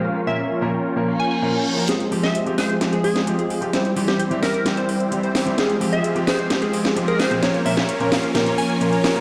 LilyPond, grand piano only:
\new Staff \with { instrumentName = "Grand piano" } { \time 4/4 \key f \minor \tempo 4 = 130 r8 <bes, f bes des' bes'>16 r8 <bes, f bes des' bes'>16 r8 <bes, f bes des' bes'>16 r8. <bes, f bes des' bes'>16 r8 <f bes des' bes'>16 | r8 <f aes c' g'>16 r8 <f aes c' g'>16 r8 <f aes c' g'>16 r8. <f aes c' g'>16 r8 <f aes c' g'>16 | r8 <e g c' g'>16 r8 <e g c' g'>16 r8 <e g c' g'>16 r8. <e g c' g'>16 r8 <e g c' g'>16 | r8 <f aes c' g'>16 r8 <f aes c' g'>16 r8 <f aes c' g'>16 r8. <f aes c' g'>16 r8 <bes, f aes c' g'>16 |
r8 <bes, f bes des' bes'>16 r8 <bes, f bes des' bes'>16 r8 <bes, f bes des' bes'>16 r8. <bes, f bes des' bes'>16 r8 <f bes des' bes'>16 | }